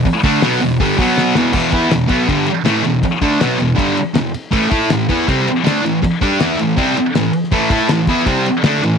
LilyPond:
<<
  \new Staff \with { instrumentName = "Distorted electric guitar" } { \clef bass \time 4/4 \key a \major \tempo 4 = 161 r8 <d a d'>8 <b, fis b>8 <e, b,>8 <g, d g>8 <b, fis b>4 <e, b, e>8 | <e, b, e>8 <e b e'>8 <e, b,>8 <b, fis b>8 <g, d g>8 r8 <a, e a>8 <e, b,>8 | r8 <d a d'>8 <b, fis b>8 <e, b,>8 <g, d g>8 r8 <e, b,>8 r8 | <a, e a>8 <a e' a'>8 <a, e>8 <e b e'>8 <c g c'>8 r8 <d a d'>8 <a, e>8 |
r8 <g d' g'>8 <e b e'>8 <a, e>8 <c g c'>8 r8 <a, e>8 r8 | <a, e a>8 <a e' a'>8 <a, e>8 <e b e'>8 <c g c'>8 r8 <d a d'>8 <a, e>8 | }
  \new DrumStaff \with { instrumentName = "Drums" } \drummode { \time 4/4 <hho bd>8 <hho bd>8 <hho sn>8 hho8 <hho bd>8 <hho bd>8 sn8 sn8 | <cymc bd>8 <bd cymr>8 <cymr sn>8 <bd cymr>8 <bd cymr>8 cymr8 <cymr sn>8 cymr8 | <bd cymr>8 <bd cymr>8 <cymr sn>8 cymr8 <bd cymr>8 cymr8 <cymr sn>8 cymr8 | <bd cymr>8 <bd cymr>8 <cymr sn>8 <bd cymr>8 <bd cymr>8 cymr8 <cymr sn>8 cymr8 |
<bd cymr>8 <bd cymr>8 <cymr sn>8 cymr8 <bd cymr>8 cymr8 <cymr sn>8 cymr16 sn16 | <cymc bd>8 <bd cymr>8 <cymr sn>8 <bd cymr>8 <bd cymr>8 cymr8 <cymr sn>8 cymr8 | }
>>